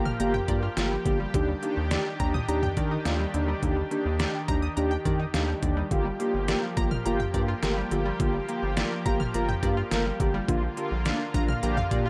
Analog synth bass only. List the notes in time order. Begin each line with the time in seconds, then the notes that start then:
Already playing: G1
0.20 G1
0.48 G2
0.77 G1
1.06 G1
1.34 D#2
1.77 D#2
2.20 D#2
2.49 D#2
2.77 D#3
3.06 D#2
3.34 D#2
3.63 D#2
4.06 D#2
4.49 D#2
4.77 D#2
5.05 D#3
5.34 D#2
5.63 D#2
5.91 G1
6.34 G1
6.77 G1
7.06 G1
7.34 G2
7.63 G1
7.91 G1
8.20 G1
8.63 G1
9.06 G1
9.34 G1
9.63 G2
9.91 G1
10.20 G1
10.48 A#1
10.91 A#1
11.34 A#1
11.63 A#1
11.91 A#2